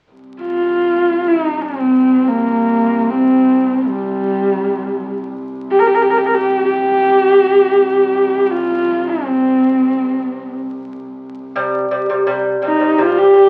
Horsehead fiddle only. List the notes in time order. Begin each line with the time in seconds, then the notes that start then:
0.42 F4
1.28 D#4
1.63 C4
2.28 A#3
3.10 C4
3.89 G3
5.71 G4
5.79 A#4
5.87 G4
5.95 A#4
6.02 G4
6.10 A#4
6.18 G4
6.26 A#4
6.34 G4
6.65 G4
8.46 G4
8.50 F4
9.09 C4
12.66 D#4
13.01 F4
13.18 G4